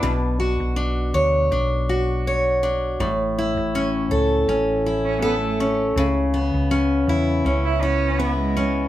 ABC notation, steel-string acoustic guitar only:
X:1
M:4/4
L:1/8
Q:"Swing 16ths" 1/4=81
K:A
V:1 name="Steel-string acoustic guitar"
B,, F D c D F c D | A,, E C A C E A C | C, B, C E C B, E C |]